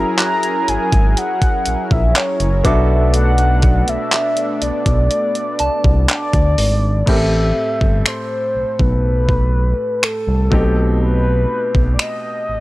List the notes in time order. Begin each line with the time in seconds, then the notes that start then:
Already playing: F#3 C#4 E4 G#4 A#4 A#5
0.18 A#5 F#6, clap, closed hi-hat
0.43 closed hi-hat
0.68 G#1 G#5, closed hi-hat
0.92 G#1, kick, closed hi-hat
1.17 F#5, closed hi-hat
1.42 kick, closed hi-hat
1.66 A#1, closed hi-hat
1.91 A#1 E5, kick
2.16 C#5, clap, closed hi-hat
2.40 F#1, closed hi-hat
2.63 B1 B2 A3 B3 D4 F#4 A4 E5 D6, kick, closed hi-hat
3.14 F#5, closed hi-hat
3.38 closed hi-hat
3.62 kick, closed hi-hat
3.88 B1 E5, closed hi-hat
4.12 clap, closed hi-hat
4.37 closed hi-hat
4.62 B1 D5, closed hi-hat
4.86 B1, kick, closed hi-hat
5.11 closed hi-hat
5.35 closed hi-hat
5.59 C2 A5, closed hi-hat
5.84 C2, kick
6.09 D5, clap, closed hi-hat
6.33 D2, kick, closed hi-hat
6.58 G#1, open hi-hat
7.06 A1 A2 A3 C4 G4 A#4 E5, kick, crash
7.16 A4
7.81 G1, kick
8.06 C5, finger snap
8.55 B1
8.79 B1 B4, kick
9.29 kick
10.03 A4, finger snap
10.27 C2
10.50 B1 B2 A3 C4 D#4 G4, kick
11.02 B4
11.75 B1, kick
11.94 D5
11.99 D#5, finger snap
12.49 A1